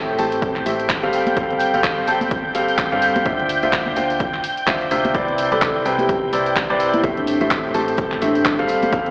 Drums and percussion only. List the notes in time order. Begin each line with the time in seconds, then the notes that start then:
0.18 open hi-hat, tambourine
0.32 closed hi-hat, tambourine
0.42 kick, closed hi-hat, tambourine
0.56 clap
0.66 open hi-hat, tambourine
0.80 closed hi-hat, tambourine
0.89 kick, clap, closed hi-hat
1.03 closed hi-hat
1.13 open hi-hat, tambourine
1.27 closed hi-hat, tambourine, high conga
1.36 kick, closed hi-hat, tambourine
1.50 closed hi-hat
1.59 open hi-hat, tambourine
1.74 closed hi-hat, tambourine
1.84 kick, clap, closed hi-hat, tambourine
2.07 open hi-hat, tambourine
2.21 closed hi-hat, tambourine, high conga
2.31 kick, closed hi-hat
2.54 open hi-hat, tambourine
2.68 closed hi-hat, tambourine
2.78 kick, clap, closed hi-hat, tambourine
2.92 closed hi-hat
3.02 open hi-hat, tambourine
3.16 closed hi-hat, tambourine, high conga
3.26 kick, closed hi-hat
3.39 closed hi-hat
3.49 open hi-hat, tambourine
3.62 closed hi-hat, tambourine
3.73 kick, clap, closed hi-hat
3.86 high conga
3.96 open hi-hat, tambourine
4.10 closed hi-hat, tambourine
4.19 kick, closed hi-hat, tambourine
4.34 clap
4.44 open hi-hat, tambourine
4.57 closed hi-hat, tambourine
4.67 kick, clap, closed hi-hat, tambourine
4.81 closed hi-hat
4.91 open hi-hat, tambourine
5.05 closed hi-hat, tambourine, high conga
5.15 kick, closed hi-hat, tambourine
5.28 closed hi-hat
5.38 open hi-hat, tambourine
5.52 closed hi-hat, tambourine
5.62 kick, clap, closed hi-hat, tambourine
5.86 open hi-hat, tambourine
5.98 closed hi-hat, tambourine, high conga
6.09 kick, closed hi-hat, tambourine
6.33 open hi-hat, tambourine
6.46 closed hi-hat, tambourine
6.56 kick, clap, closed hi-hat
6.70 closed hi-hat
6.80 open hi-hat, tambourine
6.93 closed hi-hat, tambourine, high conga
7.04 kick, closed hi-hat, tambourine
7.17 closed hi-hat
7.27 open hi-hat, tambourine
7.41 closed hi-hat, tambourine
7.51 kick, clap, closed hi-hat, tambourine
7.74 open hi-hat, tambourine
7.88 closed hi-hat, tambourine
7.97 kick, closed hi-hat, tambourine
8.12 clap
8.22 open hi-hat, tambourine
8.35 closed hi-hat, tambourine
8.45 kick, clap, closed hi-hat
8.59 closed hi-hat
8.68 open hi-hat, tambourine
8.82 closed hi-hat, tambourine, high conga
8.92 kick, closed hi-hat, tambourine
9.06 closed hi-hat